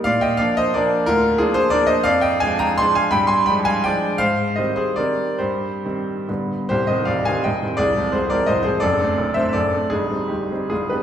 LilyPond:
<<
  \new Staff \with { instrumentName = "Grand piano" } { \time 3/4 \key bes \mixolydian \tempo 4 = 165 <d'' f''>8 <ees'' g''>8 <d'' f''>8 <c'' ees''>8 <bes' d''>4 | <f' bes'>4 <f' aes'>8 <aes' c''>8 <bes' d''>8 <c'' ees''>8 | \key c \minor <d'' f''>8 <ees'' g''>8 <f'' aes''>8 <g'' bes''>8 <aes'' c'''>8 <f'' aes''>8 | <g'' b''>8 <aes'' c'''>8 <g'' b''>8 <f'' aes''>8 <d'' g''>4 |
<c'' f''>4 <c'' ees''>8 <aes' c''>8 <bes' d''>4 | <g' c''>2 r4 | <g' c''>8 <c'' ees''>8 <d'' f''>8 <f'' aes''>8 <ees'' g''>4 | <aes' d''>4 <aes' c''>8 <bes' d''>8 <c'' ees''>8 <aes' c''>8 |
<a' d''>4. <c'' e''>8 <a' d''>4 | <ees' aes'>4 <ees' g'>4 <f' aes'>8 <g' b'>8 | }
  \new Staff \with { instrumentName = "Grand piano" } { \clef bass \time 3/4 \key bes \mixolydian bes,4 <f bes d'>4 <f bes d'>4 | d,4 <f bes d'>4 <f bes d'>4 | \key c \minor f,4 <f aes d'>4 <f aes d'>4 | g,4 <f aes d'>4 <f aes d'>4 |
aes,4 <ees g c'>4 <ees g c'>4 | g,4 <ees g c'>4 <g, d g b>4 | <c,, c,>8 <ees g c'>8 <c,, c,>8 <ees g c'>8 <c,, c,>8 <ees g c'>8 | <c,, c,>8 <f aes c'>8 <c,, c,>8 <f aes c'>8 <c,, c,>8 <f aes c'>8 |
<fis,, fis,>8 <a c' d'>8 <fis,, fis,>8 <a c' d'>8 <fis,, fis,>8 <a c' d'>8 | <g,, g,>8 <g c' ees'>8 <g,, g,>8 <g c' ees'>8 <g,, g,>8 <g b d'>8 | }
>>